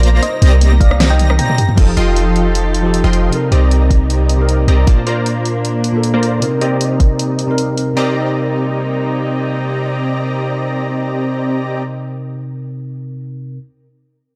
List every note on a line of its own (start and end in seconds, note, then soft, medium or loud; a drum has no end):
0.00 0.20 A#1 loud
0.00 0.21 A#3 loud
0.00 1.73 A#3 medium
0.00 0.21 D4 medium
0.00 0.21 F4 loud
0.00 0.09 F4 medium
0.00 0.14 A#4 medium
0.00 0.21 C5 loud
0.00 0.14 D5 medium
0.00 0.21 D5 medium
0.00 0.21 A#5 loud
0.00 0.22 A#6 loud
0.00 closed hi-hat medium
0.13 0.17 A3 medium
0.22 1.76 C3 medium
0.22 1.76 G3 medium
0.22 0.28 A#3 loud
0.22 1.76 D#4 medium
0.22 0.45 C5 medium
0.22 0.45 D#5 loud
0.22 closed hi-hat medium
0.33 0.36 C5 medium
0.42 1.39 C2 loud
0.42 0.44 A#3 medium
0.42 1.56 C4 medium
0.42 1.56 G4 medium
0.42 1.56 D5 medium
0.42 1.56 D#5 medium
0.42 1.56 A#5 loud
0.42 1.56 A#6 loud
0.42 closed hi-hat medium
0.52 0.54 A#4 loud
0.61 0.67 A#3 medium
0.61 closed hi-hat medium
0.72 0.74 A#3 loud
0.80 0.86 G4 medium
0.80 1.03 D5 medium
0.80 1.03 F5 loud
0.80 kick medium
0.80 closed hi-hat medium
0.91 0.94 A#3 medium
0.91 cross-stick medium
1.00 1.06 A#3 loud
1.00 cross-stick medium
1.00 snare loud
1.00 closed hi-hat medium
1.10 1.14 C5 medium
1.10 1.32 D#5 medium
1.10 1.32 G5 medium
1.19 1.22 A#3 medium
1.19 closed hi-hat medium
1.19 high tom medium
1.30 1.32 A#4 loud
1.30 cross-stick medium
1.30 high tom medium
1.39 1.45 A#3 medium
1.39 1.69 G5 medium
1.39 1.69 A#5 loud
1.39 closed hi-hat medium
1.39 mid tom medium
1.49 1.51 A#3 loud
1.49 mid tom medium
1.58 1.64 G4 medium
1.58 closed hi-hat medium
1.58 mid tom medium
1.68 1.72 A#3 medium
1.68 mid tom medium
1.75 1.95 F1 medium
1.75 2.81 F3 loud
1.75 3.31 F3 medium
1.75 1.91 F3 medium
1.75 2.82 D#4 medium
1.75 4.84 D#4 medium
1.75 1.91 F4 medium
1.75 3.31 G4 medium
1.75 2.82 G4 medium
1.75 3.31 A4 medium
1.75 1.91 D#5 medium
1.75 1.91 G5 medium
1.75 1.91 A5 medium
1.75 kick loud
1.75 closed hi-hat medium
1.75 crash medium
1.79 2.83 A4 loud
1.97 3.02 F1 medium
1.97 3.02 F3 medium
1.97 3.02 F4 medium
1.97 3.02 D#5 medium
1.97 3.02 G5 medium
1.97 3.01 C6 medium
1.97 closed hi-hat medium
2.16 closed hi-hat medium
2.36 closed hi-hat medium
2.55 closed hi-hat medium
2.74 closed hi-hat medium
2.83 3.29 F3 loud
2.83 3.30 D#4 medium
2.83 3.30 G4 medium
2.83 3.31 A4 loud
2.94 closed hi-hat medium
3.04 3.29 F1 loud
3.04 3.31 F3 loud
3.04 3.31 F4 medium
3.04 3.31 D#5 medium
3.04 3.31 G5 medium
3.04 3.31 C6 loud
3.13 closed hi-hat medium
3.30 4.36 C3 medium
3.30 4.86 C3 medium
3.30 4.86 G3 medium
3.30 7.93 A#3 medium
3.30 4.37 C4 medium
3.30 4.37 D#4 medium
3.30 closed hi-hat medium
3.34 4.38 A#4 loud
3.52 4.66 C2 loud
3.52 4.66 C4 medium
3.52 4.66 G4 medium
3.52 4.66 D5 medium
3.52 4.66 D#5 medium
3.52 4.66 A#5 medium
3.52 closed hi-hat medium
3.71 closed hi-hat medium
3.90 kick medium
3.90 closed hi-hat medium
4.10 closed hi-hat medium
4.29 closed hi-hat medium
4.37 4.84 C3 medium
4.37 4.85 C4 medium
4.37 4.85 D#4 medium
4.37 4.86 A#4 loud
4.49 closed hi-hat medium
4.68 4.85 C2 medium
4.68 4.85 C4 medium
4.68 4.85 G4 medium
4.68 4.85 D5 medium
4.68 4.85 D#5 medium
4.68 4.85 A#5 loud
4.68 closed hi-hat medium
4.85 5.91 A#2 loud
4.85 5.91 A#3 medium
4.85 5.00 A#3 medium
4.85 6.41 D4 medium
4.85 5.92 D4 medium
4.85 5.00 F4 medium
4.85 5.00 C5 medium
4.85 5.00 D5 medium
4.85 5.00 A5 medium
4.85 kick loud
4.85 closed hi-hat medium
5.07 6.11 A#3 medium
5.07 6.11 F4 medium
5.07 6.11 C5 medium
5.07 6.11 D5 medium
5.07 6.11 A#5 medium
5.07 closed hi-hat medium
5.26 closed hi-hat medium
5.45 closed hi-hat medium
5.65 closed hi-hat medium
5.84 closed hi-hat medium
5.92 6.39 A#2 medium
5.92 6.39 A#3 medium
5.92 6.40 D4 medium
5.96 6.41 A4 loud
6.03 closed hi-hat medium
6.14 6.41 A#3 loud
6.14 6.41 F4 medium
6.14 6.41 C5 medium
6.14 6.41 D5 medium
6.14 6.41 A#5 loud
6.23 closed hi-hat medium
6.40 7.46 C3 medium
6.40 7.95 C3 medium
6.40 7.95 G3 medium
6.40 7.46 C4 medium
6.40 7.95 D#4 medium
6.40 7.47 D#4 medium
6.40 7.48 A#4 loud
6.40 closed hi-hat medium
6.61 7.75 C4 medium
6.61 7.75 G4 medium
6.61 7.75 D5 medium
6.61 7.75 D#5 medium
6.61 7.75 A#5 loud
6.61 closed hi-hat medium
6.81 closed hi-hat medium
7.00 kick medium
7.00 closed hi-hat medium
7.19 closed hi-hat medium
7.39 closed hi-hat medium
7.47 7.92 C3 medium
7.47 7.94 C4 medium
7.47 7.95 D#4 medium
7.51 7.96 A#4 loud
7.58 closed hi-hat medium
7.78 closed hi-hat medium
7.94 12.29 C3 medium
7.94 11.82 C3 medium
7.94 11.82 G3 medium
7.94 11.82 A#3 medium
7.94 12.31 C4 medium
7.94 11.82 C4 medium
7.94 11.82 D#4 medium
7.94 11.82 G4 medium
7.94 11.82 D5 medium
7.94 11.82 D#5 medium
7.94 11.82 A#5 medium
7.98 12.33 D#4 medium
7.98 12.35 A#4 medium